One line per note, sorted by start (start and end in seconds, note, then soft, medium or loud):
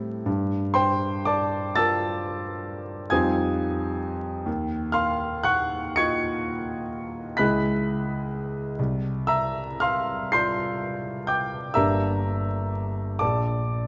0.00 0.22 A2 medium
0.00 0.22 G3 soft
0.00 0.23 C4 soft
0.00 0.23 E4 soft
0.00 0.23 A4 soft
0.26 3.07 G2 medium
0.74 1.24 C5 medium
0.74 1.24 G5 medium
0.74 1.27 C6 medium
1.25 1.74 D5 medium
1.25 1.74 A5 medium
1.25 1.77 D6 medium
1.75 3.07 F4 soft
1.75 3.08 A#4 soft
1.75 3.07 A5 medium
1.75 3.07 E6 medium
1.75 3.11 A6 loud
3.10 4.43 F2 medium
3.10 4.43 G3 soft
3.10 4.43 D#4 soft
3.10 4.44 F4 soft
3.10 4.44 C5 soft
3.10 4.43 G#5 medium
3.10 4.42 D#6 medium
3.10 4.46 G#6 medium
4.46 7.34 D#2 medium
4.92 5.43 F5 medium
4.92 5.43 C6 medium
4.92 5.46 F6 medium
5.43 5.93 F#5 medium
5.43 5.93 C#6 medium
5.43 5.96 F#6 loud
5.96 7.35 F4 soft
5.96 7.35 D#5 soft
5.96 7.34 C#6 medium
5.96 7.34 G#6 medium
5.96 7.38 C#7 loud
7.37 8.74 C#2 medium
7.37 8.74 G#3 soft
7.37 8.74 E4 soft
7.37 8.75 G#4 soft
7.37 8.75 D#5 soft
7.37 8.74 B5 medium
7.37 8.74 F#6 medium
7.37 8.77 B6 medium
8.79 11.72 C2 medium
9.27 9.78 E5 medium
9.27 9.78 A#5 medium
9.27 9.81 E6 medium
9.80 10.30 F5 medium
9.80 10.30 C6 medium
9.80 10.33 F6 medium
10.32 11.72 F4 soft
10.32 11.72 D5 soft
10.32 11.24 C6 medium
10.32 11.24 G6 medium
10.32 11.28 C7 medium
11.27 11.72 G5 medium
11.27 11.72 D6 medium
11.27 11.75 G6 medium
11.74 13.17 G1 soft
11.74 13.17 A#3 soft
11.74 13.18 D4 soft
11.74 13.18 G4 soft
11.74 13.18 D5 soft
11.74 13.17 E5 medium
11.74 13.17 A#5 medium
11.74 13.20 E6 medium
13.19 13.87 A#1 medium
13.19 13.87 D5 medium
13.19 13.87 A5 medium
13.19 13.87 D6 medium